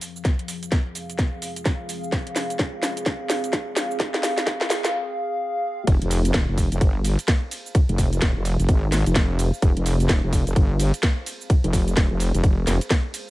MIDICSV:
0, 0, Header, 1, 4, 480
1, 0, Start_track
1, 0, Key_signature, -4, "minor"
1, 0, Tempo, 468750
1, 254, Time_signature, 4, 2, 24, 8
1, 13619, End_track
2, 0, Start_track
2, 0, Title_t, "Analog synth pad"
2, 0, Program_c, 0, 89
2, 0, Note_on_c, 0, 53, 82
2, 0, Note_on_c, 0, 60, 76
2, 0, Note_on_c, 0, 68, 76
2, 0, Note_on_c, 0, 77, 93
2, 5974, Note_off_c, 0, 53, 0
2, 5974, Note_off_c, 0, 60, 0
2, 5974, Note_off_c, 0, 68, 0
2, 5974, Note_off_c, 0, 77, 0
2, 6015, Note_on_c, 0, 68, 87
2, 6015, Note_on_c, 0, 72, 77
2, 6015, Note_on_c, 0, 77, 96
2, 13619, Note_off_c, 0, 68, 0
2, 13619, Note_off_c, 0, 72, 0
2, 13619, Note_off_c, 0, 77, 0
2, 13619, End_track
3, 0, Start_track
3, 0, Title_t, "Wobble bass"
3, 0, Program_c, 1, 39
3, 6014, Note_on_c, 1, 29, 97
3, 6138, Note_off_c, 1, 29, 0
3, 6161, Note_on_c, 1, 29, 95
3, 6479, Note_off_c, 1, 29, 0
3, 6494, Note_on_c, 1, 27, 98
3, 6618, Note_off_c, 1, 27, 0
3, 6641, Note_on_c, 1, 29, 97
3, 6858, Note_off_c, 1, 29, 0
3, 6881, Note_on_c, 1, 29, 96
3, 6959, Note_off_c, 1, 29, 0
3, 6974, Note_on_c, 1, 31, 102
3, 7338, Note_off_c, 1, 31, 0
3, 8081, Note_on_c, 1, 29, 100
3, 8399, Note_off_c, 1, 29, 0
3, 8415, Note_on_c, 1, 27, 101
3, 8538, Note_off_c, 1, 27, 0
3, 8561, Note_on_c, 1, 29, 97
3, 8778, Note_off_c, 1, 29, 0
3, 8802, Note_on_c, 1, 29, 94
3, 8880, Note_off_c, 1, 29, 0
3, 8894, Note_on_c, 1, 32, 102
3, 9258, Note_off_c, 1, 32, 0
3, 9282, Note_on_c, 1, 29, 98
3, 9738, Note_off_c, 1, 29, 0
3, 9855, Note_on_c, 1, 29, 97
3, 9978, Note_off_c, 1, 29, 0
3, 10001, Note_on_c, 1, 29, 95
3, 10319, Note_off_c, 1, 29, 0
3, 10334, Note_on_c, 1, 27, 98
3, 10458, Note_off_c, 1, 27, 0
3, 10481, Note_on_c, 1, 29, 97
3, 10698, Note_off_c, 1, 29, 0
3, 10721, Note_on_c, 1, 29, 98
3, 10799, Note_off_c, 1, 29, 0
3, 10815, Note_on_c, 1, 31, 102
3, 11178, Note_off_c, 1, 31, 0
3, 11921, Note_on_c, 1, 29, 96
3, 12239, Note_off_c, 1, 29, 0
3, 12254, Note_on_c, 1, 27, 100
3, 12378, Note_off_c, 1, 27, 0
3, 12400, Note_on_c, 1, 29, 95
3, 12617, Note_off_c, 1, 29, 0
3, 12641, Note_on_c, 1, 29, 97
3, 12719, Note_off_c, 1, 29, 0
3, 12734, Note_on_c, 1, 29, 99
3, 12960, Note_off_c, 1, 29, 0
3, 12974, Note_on_c, 1, 29, 99
3, 13098, Note_off_c, 1, 29, 0
3, 13619, End_track
4, 0, Start_track
4, 0, Title_t, "Drums"
4, 14, Note_on_c, 9, 46, 92
4, 19, Note_on_c, 9, 82, 77
4, 117, Note_off_c, 9, 46, 0
4, 122, Note_off_c, 9, 82, 0
4, 166, Note_on_c, 9, 82, 44
4, 254, Note_on_c, 9, 38, 58
4, 254, Note_on_c, 9, 42, 67
4, 255, Note_on_c, 9, 36, 120
4, 259, Note_off_c, 9, 82, 0
4, 259, Note_on_c, 9, 82, 31
4, 357, Note_off_c, 9, 36, 0
4, 357, Note_off_c, 9, 38, 0
4, 357, Note_off_c, 9, 42, 0
4, 362, Note_off_c, 9, 82, 0
4, 401, Note_on_c, 9, 42, 52
4, 494, Note_on_c, 9, 46, 111
4, 499, Note_on_c, 9, 82, 73
4, 504, Note_off_c, 9, 42, 0
4, 597, Note_off_c, 9, 46, 0
4, 601, Note_off_c, 9, 82, 0
4, 642, Note_on_c, 9, 42, 51
4, 647, Note_on_c, 9, 82, 43
4, 734, Note_off_c, 9, 42, 0
4, 734, Note_on_c, 9, 38, 63
4, 734, Note_on_c, 9, 42, 65
4, 735, Note_on_c, 9, 36, 107
4, 739, Note_off_c, 9, 82, 0
4, 739, Note_on_c, 9, 82, 32
4, 837, Note_off_c, 9, 36, 0
4, 837, Note_off_c, 9, 38, 0
4, 837, Note_off_c, 9, 42, 0
4, 842, Note_off_c, 9, 82, 0
4, 974, Note_on_c, 9, 46, 90
4, 979, Note_on_c, 9, 82, 74
4, 1077, Note_off_c, 9, 46, 0
4, 1082, Note_off_c, 9, 82, 0
4, 1122, Note_on_c, 9, 42, 51
4, 1127, Note_on_c, 9, 82, 43
4, 1215, Note_off_c, 9, 42, 0
4, 1215, Note_on_c, 9, 36, 120
4, 1215, Note_on_c, 9, 38, 66
4, 1215, Note_on_c, 9, 42, 66
4, 1219, Note_off_c, 9, 82, 0
4, 1219, Note_on_c, 9, 82, 31
4, 1317, Note_off_c, 9, 36, 0
4, 1317, Note_off_c, 9, 38, 0
4, 1317, Note_off_c, 9, 42, 0
4, 1322, Note_off_c, 9, 82, 0
4, 1454, Note_on_c, 9, 46, 108
4, 1459, Note_on_c, 9, 82, 74
4, 1557, Note_off_c, 9, 46, 0
4, 1562, Note_off_c, 9, 82, 0
4, 1602, Note_on_c, 9, 42, 55
4, 1606, Note_on_c, 9, 82, 44
4, 1695, Note_off_c, 9, 42, 0
4, 1695, Note_on_c, 9, 36, 108
4, 1695, Note_on_c, 9, 38, 68
4, 1695, Note_on_c, 9, 42, 64
4, 1699, Note_off_c, 9, 82, 0
4, 1699, Note_on_c, 9, 82, 32
4, 1797, Note_off_c, 9, 36, 0
4, 1797, Note_off_c, 9, 38, 0
4, 1797, Note_off_c, 9, 42, 0
4, 1802, Note_off_c, 9, 82, 0
4, 1935, Note_on_c, 9, 46, 94
4, 1940, Note_on_c, 9, 82, 77
4, 2037, Note_off_c, 9, 46, 0
4, 2042, Note_off_c, 9, 82, 0
4, 2087, Note_on_c, 9, 82, 42
4, 2175, Note_on_c, 9, 36, 125
4, 2175, Note_on_c, 9, 38, 75
4, 2175, Note_on_c, 9, 42, 62
4, 2180, Note_off_c, 9, 82, 0
4, 2180, Note_on_c, 9, 82, 31
4, 2277, Note_off_c, 9, 36, 0
4, 2277, Note_off_c, 9, 38, 0
4, 2277, Note_off_c, 9, 42, 0
4, 2282, Note_off_c, 9, 82, 0
4, 2322, Note_on_c, 9, 42, 52
4, 2414, Note_on_c, 9, 38, 76
4, 2414, Note_on_c, 9, 46, 110
4, 2420, Note_on_c, 9, 82, 77
4, 2424, Note_off_c, 9, 42, 0
4, 2517, Note_off_c, 9, 38, 0
4, 2517, Note_off_c, 9, 46, 0
4, 2522, Note_off_c, 9, 82, 0
4, 2562, Note_on_c, 9, 42, 52
4, 2567, Note_on_c, 9, 82, 43
4, 2654, Note_on_c, 9, 36, 112
4, 2655, Note_off_c, 9, 42, 0
4, 2655, Note_on_c, 9, 38, 80
4, 2655, Note_on_c, 9, 42, 64
4, 2660, Note_off_c, 9, 82, 0
4, 2660, Note_on_c, 9, 82, 32
4, 2757, Note_off_c, 9, 36, 0
4, 2757, Note_off_c, 9, 38, 0
4, 2757, Note_off_c, 9, 42, 0
4, 2762, Note_off_c, 9, 82, 0
4, 2895, Note_on_c, 9, 38, 80
4, 2895, Note_on_c, 9, 46, 95
4, 2900, Note_on_c, 9, 82, 73
4, 2997, Note_off_c, 9, 38, 0
4, 2997, Note_off_c, 9, 46, 0
4, 3002, Note_off_c, 9, 82, 0
4, 3041, Note_on_c, 9, 42, 53
4, 3047, Note_on_c, 9, 82, 42
4, 3134, Note_on_c, 9, 36, 126
4, 3135, Note_off_c, 9, 42, 0
4, 3135, Note_on_c, 9, 38, 82
4, 3135, Note_on_c, 9, 42, 65
4, 3140, Note_off_c, 9, 82, 0
4, 3140, Note_on_c, 9, 82, 32
4, 3237, Note_off_c, 9, 36, 0
4, 3237, Note_off_c, 9, 38, 0
4, 3237, Note_off_c, 9, 42, 0
4, 3242, Note_off_c, 9, 82, 0
4, 3375, Note_on_c, 9, 38, 86
4, 3375, Note_on_c, 9, 46, 112
4, 3380, Note_on_c, 9, 82, 75
4, 3477, Note_off_c, 9, 38, 0
4, 3477, Note_off_c, 9, 46, 0
4, 3482, Note_off_c, 9, 82, 0
4, 3522, Note_on_c, 9, 42, 52
4, 3526, Note_on_c, 9, 82, 44
4, 3614, Note_off_c, 9, 42, 0
4, 3614, Note_on_c, 9, 36, 109
4, 3614, Note_on_c, 9, 38, 87
4, 3614, Note_on_c, 9, 42, 64
4, 3619, Note_off_c, 9, 82, 0
4, 3619, Note_on_c, 9, 82, 31
4, 3717, Note_off_c, 9, 36, 0
4, 3717, Note_off_c, 9, 38, 0
4, 3717, Note_off_c, 9, 42, 0
4, 3722, Note_off_c, 9, 82, 0
4, 3854, Note_on_c, 9, 38, 91
4, 3854, Note_on_c, 9, 46, 96
4, 3859, Note_on_c, 9, 82, 74
4, 3957, Note_off_c, 9, 38, 0
4, 3957, Note_off_c, 9, 46, 0
4, 3962, Note_off_c, 9, 82, 0
4, 4006, Note_on_c, 9, 82, 42
4, 4094, Note_on_c, 9, 36, 127
4, 4094, Note_on_c, 9, 38, 91
4, 4094, Note_on_c, 9, 42, 64
4, 4099, Note_off_c, 9, 82, 0
4, 4099, Note_on_c, 9, 82, 33
4, 4197, Note_off_c, 9, 36, 0
4, 4197, Note_off_c, 9, 38, 0
4, 4197, Note_off_c, 9, 42, 0
4, 4202, Note_off_c, 9, 82, 0
4, 4241, Note_on_c, 9, 38, 85
4, 4241, Note_on_c, 9, 42, 52
4, 4334, Note_off_c, 9, 38, 0
4, 4334, Note_on_c, 9, 38, 93
4, 4334, Note_on_c, 9, 46, 114
4, 4339, Note_on_c, 9, 82, 78
4, 4344, Note_off_c, 9, 42, 0
4, 4436, Note_off_c, 9, 38, 0
4, 4436, Note_off_c, 9, 46, 0
4, 4441, Note_off_c, 9, 82, 0
4, 4481, Note_on_c, 9, 38, 83
4, 4481, Note_on_c, 9, 42, 52
4, 4486, Note_on_c, 9, 82, 43
4, 4574, Note_off_c, 9, 38, 0
4, 4574, Note_off_c, 9, 42, 0
4, 4574, Note_on_c, 9, 36, 111
4, 4574, Note_on_c, 9, 38, 95
4, 4574, Note_on_c, 9, 42, 64
4, 4579, Note_off_c, 9, 82, 0
4, 4579, Note_on_c, 9, 82, 33
4, 4676, Note_off_c, 9, 38, 0
4, 4676, Note_off_c, 9, 42, 0
4, 4677, Note_off_c, 9, 36, 0
4, 4681, Note_off_c, 9, 82, 0
4, 4721, Note_on_c, 9, 38, 87
4, 4814, Note_off_c, 9, 38, 0
4, 4814, Note_on_c, 9, 38, 101
4, 4814, Note_on_c, 9, 46, 97
4, 4819, Note_on_c, 9, 82, 76
4, 4916, Note_off_c, 9, 38, 0
4, 4916, Note_off_c, 9, 46, 0
4, 4921, Note_off_c, 9, 82, 0
4, 4961, Note_on_c, 9, 38, 92
4, 4961, Note_on_c, 9, 42, 51
4, 4966, Note_on_c, 9, 82, 44
4, 5063, Note_off_c, 9, 38, 0
4, 5063, Note_off_c, 9, 42, 0
4, 5068, Note_off_c, 9, 82, 0
4, 6014, Note_on_c, 9, 36, 119
4, 6014, Note_on_c, 9, 42, 70
4, 6014, Note_on_c, 9, 51, 53
4, 6019, Note_on_c, 9, 82, 34
4, 6116, Note_off_c, 9, 42, 0
4, 6116, Note_off_c, 9, 51, 0
4, 6117, Note_off_c, 9, 36, 0
4, 6121, Note_off_c, 9, 82, 0
4, 6161, Note_on_c, 9, 42, 56
4, 6254, Note_on_c, 9, 46, 106
4, 6254, Note_on_c, 9, 51, 78
4, 6259, Note_on_c, 9, 82, 80
4, 6264, Note_off_c, 9, 42, 0
4, 6356, Note_off_c, 9, 46, 0
4, 6356, Note_off_c, 9, 51, 0
4, 6361, Note_off_c, 9, 82, 0
4, 6401, Note_on_c, 9, 42, 58
4, 6406, Note_on_c, 9, 82, 46
4, 6494, Note_off_c, 9, 42, 0
4, 6494, Note_on_c, 9, 36, 120
4, 6494, Note_on_c, 9, 38, 127
4, 6494, Note_on_c, 9, 42, 71
4, 6494, Note_on_c, 9, 51, 55
4, 6499, Note_off_c, 9, 82, 0
4, 6499, Note_on_c, 9, 82, 33
4, 6596, Note_off_c, 9, 42, 0
4, 6596, Note_off_c, 9, 51, 0
4, 6597, Note_off_c, 9, 36, 0
4, 6597, Note_off_c, 9, 38, 0
4, 6601, Note_off_c, 9, 82, 0
4, 6734, Note_on_c, 9, 36, 63
4, 6734, Note_on_c, 9, 46, 93
4, 6734, Note_on_c, 9, 51, 73
4, 6739, Note_on_c, 9, 82, 80
4, 6836, Note_off_c, 9, 46, 0
4, 6836, Note_off_c, 9, 51, 0
4, 6837, Note_off_c, 9, 36, 0
4, 6841, Note_off_c, 9, 82, 0
4, 6881, Note_on_c, 9, 42, 57
4, 6886, Note_on_c, 9, 82, 46
4, 6974, Note_off_c, 9, 42, 0
4, 6974, Note_on_c, 9, 36, 118
4, 6974, Note_on_c, 9, 42, 70
4, 6974, Note_on_c, 9, 51, 56
4, 6979, Note_off_c, 9, 82, 0
4, 6979, Note_on_c, 9, 82, 35
4, 7076, Note_off_c, 9, 42, 0
4, 7076, Note_off_c, 9, 51, 0
4, 7077, Note_off_c, 9, 36, 0
4, 7081, Note_off_c, 9, 82, 0
4, 7214, Note_on_c, 9, 46, 107
4, 7214, Note_on_c, 9, 51, 76
4, 7219, Note_on_c, 9, 82, 81
4, 7317, Note_off_c, 9, 46, 0
4, 7317, Note_off_c, 9, 51, 0
4, 7321, Note_off_c, 9, 82, 0
4, 7361, Note_on_c, 9, 42, 57
4, 7366, Note_on_c, 9, 82, 47
4, 7454, Note_off_c, 9, 42, 0
4, 7454, Note_on_c, 9, 36, 120
4, 7454, Note_on_c, 9, 42, 69
4, 7454, Note_on_c, 9, 51, 53
4, 7455, Note_on_c, 9, 38, 123
4, 7459, Note_off_c, 9, 82, 0
4, 7459, Note_on_c, 9, 82, 34
4, 7557, Note_off_c, 9, 36, 0
4, 7557, Note_off_c, 9, 38, 0
4, 7557, Note_off_c, 9, 42, 0
4, 7557, Note_off_c, 9, 51, 0
4, 7562, Note_off_c, 9, 82, 0
4, 7694, Note_on_c, 9, 46, 94
4, 7694, Note_on_c, 9, 51, 75
4, 7699, Note_on_c, 9, 82, 80
4, 7796, Note_off_c, 9, 46, 0
4, 7796, Note_off_c, 9, 51, 0
4, 7801, Note_off_c, 9, 82, 0
4, 7847, Note_on_c, 9, 82, 45
4, 7934, Note_on_c, 9, 36, 126
4, 7934, Note_on_c, 9, 42, 66
4, 7934, Note_on_c, 9, 51, 54
4, 7939, Note_off_c, 9, 82, 0
4, 7939, Note_on_c, 9, 82, 33
4, 8037, Note_off_c, 9, 36, 0
4, 8037, Note_off_c, 9, 42, 0
4, 8037, Note_off_c, 9, 51, 0
4, 8042, Note_off_c, 9, 82, 0
4, 8081, Note_on_c, 9, 42, 55
4, 8174, Note_on_c, 9, 36, 65
4, 8175, Note_on_c, 9, 46, 117
4, 8175, Note_on_c, 9, 51, 76
4, 8180, Note_on_c, 9, 82, 79
4, 8184, Note_off_c, 9, 42, 0
4, 8277, Note_off_c, 9, 36, 0
4, 8277, Note_off_c, 9, 46, 0
4, 8277, Note_off_c, 9, 51, 0
4, 8282, Note_off_c, 9, 82, 0
4, 8322, Note_on_c, 9, 42, 55
4, 8327, Note_on_c, 9, 82, 45
4, 8415, Note_off_c, 9, 42, 0
4, 8415, Note_on_c, 9, 36, 127
4, 8415, Note_on_c, 9, 38, 127
4, 8415, Note_on_c, 9, 42, 67
4, 8415, Note_on_c, 9, 51, 54
4, 8420, Note_off_c, 9, 82, 0
4, 8420, Note_on_c, 9, 82, 32
4, 8517, Note_off_c, 9, 36, 0
4, 8517, Note_off_c, 9, 42, 0
4, 8517, Note_off_c, 9, 51, 0
4, 8518, Note_off_c, 9, 38, 0
4, 8522, Note_off_c, 9, 82, 0
4, 8654, Note_on_c, 9, 46, 96
4, 8654, Note_on_c, 9, 51, 77
4, 8659, Note_on_c, 9, 82, 76
4, 8757, Note_off_c, 9, 46, 0
4, 8757, Note_off_c, 9, 51, 0
4, 8762, Note_off_c, 9, 82, 0
4, 8802, Note_on_c, 9, 42, 56
4, 8807, Note_on_c, 9, 82, 45
4, 8894, Note_on_c, 9, 36, 127
4, 8895, Note_off_c, 9, 42, 0
4, 8895, Note_on_c, 9, 42, 70
4, 8895, Note_on_c, 9, 51, 55
4, 8900, Note_off_c, 9, 82, 0
4, 8900, Note_on_c, 9, 82, 33
4, 8997, Note_off_c, 9, 36, 0
4, 8997, Note_off_c, 9, 42, 0
4, 8997, Note_off_c, 9, 51, 0
4, 9002, Note_off_c, 9, 82, 0
4, 9135, Note_on_c, 9, 38, 67
4, 9135, Note_on_c, 9, 46, 111
4, 9135, Note_on_c, 9, 51, 79
4, 9140, Note_on_c, 9, 82, 78
4, 9237, Note_off_c, 9, 46, 0
4, 9237, Note_off_c, 9, 51, 0
4, 9238, Note_off_c, 9, 38, 0
4, 9242, Note_off_c, 9, 82, 0
4, 9282, Note_on_c, 9, 42, 54
4, 9287, Note_on_c, 9, 82, 44
4, 9375, Note_off_c, 9, 42, 0
4, 9375, Note_on_c, 9, 36, 124
4, 9375, Note_on_c, 9, 42, 68
4, 9375, Note_on_c, 9, 51, 53
4, 9376, Note_on_c, 9, 38, 125
4, 9380, Note_off_c, 9, 82, 0
4, 9380, Note_on_c, 9, 82, 33
4, 9477, Note_off_c, 9, 36, 0
4, 9477, Note_off_c, 9, 42, 0
4, 9477, Note_off_c, 9, 51, 0
4, 9478, Note_off_c, 9, 38, 0
4, 9482, Note_off_c, 9, 82, 0
4, 9614, Note_on_c, 9, 46, 99
4, 9614, Note_on_c, 9, 51, 77
4, 9619, Note_on_c, 9, 82, 77
4, 9717, Note_off_c, 9, 46, 0
4, 9717, Note_off_c, 9, 51, 0
4, 9722, Note_off_c, 9, 82, 0
4, 9767, Note_on_c, 9, 82, 43
4, 9854, Note_on_c, 9, 42, 66
4, 9854, Note_on_c, 9, 51, 57
4, 9855, Note_on_c, 9, 36, 127
4, 9859, Note_off_c, 9, 82, 0
4, 9859, Note_on_c, 9, 82, 33
4, 9957, Note_off_c, 9, 36, 0
4, 9957, Note_off_c, 9, 42, 0
4, 9957, Note_off_c, 9, 51, 0
4, 9962, Note_off_c, 9, 82, 0
4, 10002, Note_on_c, 9, 42, 52
4, 10094, Note_on_c, 9, 46, 113
4, 10094, Note_on_c, 9, 51, 82
4, 10099, Note_on_c, 9, 82, 77
4, 10104, Note_off_c, 9, 42, 0
4, 10197, Note_off_c, 9, 46, 0
4, 10197, Note_off_c, 9, 51, 0
4, 10202, Note_off_c, 9, 82, 0
4, 10242, Note_on_c, 9, 42, 53
4, 10247, Note_on_c, 9, 82, 44
4, 10335, Note_off_c, 9, 42, 0
4, 10335, Note_on_c, 9, 36, 125
4, 10335, Note_on_c, 9, 38, 124
4, 10335, Note_on_c, 9, 42, 66
4, 10335, Note_on_c, 9, 51, 56
4, 10340, Note_off_c, 9, 82, 0
4, 10340, Note_on_c, 9, 82, 33
4, 10437, Note_off_c, 9, 36, 0
4, 10437, Note_off_c, 9, 42, 0
4, 10437, Note_off_c, 9, 51, 0
4, 10438, Note_off_c, 9, 38, 0
4, 10442, Note_off_c, 9, 82, 0
4, 10575, Note_on_c, 9, 36, 63
4, 10575, Note_on_c, 9, 46, 98
4, 10575, Note_on_c, 9, 51, 78
4, 10579, Note_on_c, 9, 82, 76
4, 10677, Note_off_c, 9, 36, 0
4, 10677, Note_off_c, 9, 46, 0
4, 10677, Note_off_c, 9, 51, 0
4, 10682, Note_off_c, 9, 82, 0
4, 10722, Note_on_c, 9, 42, 53
4, 10727, Note_on_c, 9, 82, 44
4, 10814, Note_on_c, 9, 36, 127
4, 10815, Note_off_c, 9, 42, 0
4, 10815, Note_on_c, 9, 42, 66
4, 10815, Note_on_c, 9, 51, 57
4, 10820, Note_off_c, 9, 82, 0
4, 10820, Note_on_c, 9, 82, 33
4, 10917, Note_off_c, 9, 36, 0
4, 10917, Note_off_c, 9, 42, 0
4, 10917, Note_off_c, 9, 51, 0
4, 10922, Note_off_c, 9, 82, 0
4, 11055, Note_on_c, 9, 46, 115
4, 11055, Note_on_c, 9, 51, 82
4, 11060, Note_on_c, 9, 82, 77
4, 11157, Note_off_c, 9, 46, 0
4, 11157, Note_off_c, 9, 51, 0
4, 11162, Note_off_c, 9, 82, 0
4, 11202, Note_on_c, 9, 42, 54
4, 11207, Note_on_c, 9, 82, 43
4, 11295, Note_off_c, 9, 42, 0
4, 11295, Note_on_c, 9, 36, 125
4, 11295, Note_on_c, 9, 38, 122
4, 11295, Note_on_c, 9, 42, 63
4, 11295, Note_on_c, 9, 51, 55
4, 11300, Note_off_c, 9, 82, 0
4, 11300, Note_on_c, 9, 82, 33
4, 11397, Note_off_c, 9, 36, 0
4, 11397, Note_off_c, 9, 42, 0
4, 11397, Note_off_c, 9, 51, 0
4, 11398, Note_off_c, 9, 38, 0
4, 11402, Note_off_c, 9, 82, 0
4, 11535, Note_on_c, 9, 46, 99
4, 11535, Note_on_c, 9, 51, 78
4, 11539, Note_on_c, 9, 82, 75
4, 11637, Note_off_c, 9, 46, 0
4, 11637, Note_off_c, 9, 51, 0
4, 11642, Note_off_c, 9, 82, 0
4, 11687, Note_on_c, 9, 82, 44
4, 11774, Note_on_c, 9, 36, 125
4, 11775, Note_on_c, 9, 42, 64
4, 11775, Note_on_c, 9, 51, 59
4, 11780, Note_off_c, 9, 82, 0
4, 11780, Note_on_c, 9, 82, 33
4, 11877, Note_off_c, 9, 36, 0
4, 11877, Note_off_c, 9, 42, 0
4, 11877, Note_off_c, 9, 51, 0
4, 11882, Note_off_c, 9, 82, 0
4, 11922, Note_on_c, 9, 42, 53
4, 12014, Note_on_c, 9, 36, 66
4, 12014, Note_on_c, 9, 46, 112
4, 12014, Note_on_c, 9, 51, 83
4, 12019, Note_on_c, 9, 82, 81
4, 12024, Note_off_c, 9, 42, 0
4, 12117, Note_off_c, 9, 36, 0
4, 12117, Note_off_c, 9, 46, 0
4, 12117, Note_off_c, 9, 51, 0
4, 12122, Note_off_c, 9, 82, 0
4, 12162, Note_on_c, 9, 42, 51
4, 12167, Note_on_c, 9, 82, 45
4, 12254, Note_off_c, 9, 42, 0
4, 12254, Note_on_c, 9, 36, 123
4, 12254, Note_on_c, 9, 42, 63
4, 12254, Note_on_c, 9, 51, 58
4, 12255, Note_on_c, 9, 38, 120
4, 12259, Note_off_c, 9, 82, 0
4, 12259, Note_on_c, 9, 82, 33
4, 12357, Note_off_c, 9, 36, 0
4, 12357, Note_off_c, 9, 38, 0
4, 12357, Note_off_c, 9, 42, 0
4, 12357, Note_off_c, 9, 51, 0
4, 12362, Note_off_c, 9, 82, 0
4, 12494, Note_on_c, 9, 46, 98
4, 12494, Note_on_c, 9, 51, 79
4, 12499, Note_on_c, 9, 82, 75
4, 12597, Note_off_c, 9, 46, 0
4, 12597, Note_off_c, 9, 51, 0
4, 12602, Note_off_c, 9, 82, 0
4, 12641, Note_on_c, 9, 42, 51
4, 12646, Note_on_c, 9, 82, 45
4, 12734, Note_off_c, 9, 42, 0
4, 12734, Note_on_c, 9, 36, 125
4, 12734, Note_on_c, 9, 42, 63
4, 12734, Note_on_c, 9, 51, 59
4, 12739, Note_off_c, 9, 82, 0
4, 12739, Note_on_c, 9, 82, 34
4, 12836, Note_off_c, 9, 42, 0
4, 12836, Note_off_c, 9, 51, 0
4, 12837, Note_off_c, 9, 36, 0
4, 12841, Note_off_c, 9, 82, 0
4, 12974, Note_on_c, 9, 38, 62
4, 12974, Note_on_c, 9, 46, 114
4, 12974, Note_on_c, 9, 51, 82
4, 12979, Note_on_c, 9, 82, 77
4, 13076, Note_off_c, 9, 46, 0
4, 13076, Note_off_c, 9, 51, 0
4, 13077, Note_off_c, 9, 38, 0
4, 13081, Note_off_c, 9, 82, 0
4, 13121, Note_on_c, 9, 42, 52
4, 13126, Note_on_c, 9, 82, 46
4, 13214, Note_off_c, 9, 42, 0
4, 13214, Note_on_c, 9, 36, 122
4, 13214, Note_on_c, 9, 42, 63
4, 13214, Note_on_c, 9, 51, 58
4, 13215, Note_on_c, 9, 38, 119
4, 13219, Note_off_c, 9, 82, 0
4, 13219, Note_on_c, 9, 82, 32
4, 13316, Note_off_c, 9, 42, 0
4, 13316, Note_off_c, 9, 51, 0
4, 13317, Note_off_c, 9, 36, 0
4, 13317, Note_off_c, 9, 38, 0
4, 13321, Note_off_c, 9, 82, 0
4, 13454, Note_on_c, 9, 46, 99
4, 13454, Note_on_c, 9, 51, 80
4, 13459, Note_on_c, 9, 82, 78
4, 13556, Note_off_c, 9, 46, 0
4, 13556, Note_off_c, 9, 51, 0
4, 13561, Note_off_c, 9, 82, 0
4, 13619, End_track
0, 0, End_of_file